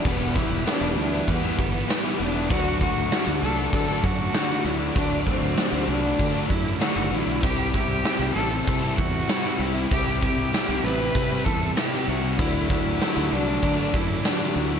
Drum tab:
CC |x-x-x-x-|x-x-x-x-|x-x-x-x-|x-x-x-x-|
SD |--o---o-|--o---o-|--o---o-|--o---o-|
BD |oo--oo--|oo--oo--|oo--oo--|oo--oo--|

CC |x-x-x-x-|x-x-x-x-|
SD |--o---o-|--o---o-|
BD |oo--oo--|oo--oo--|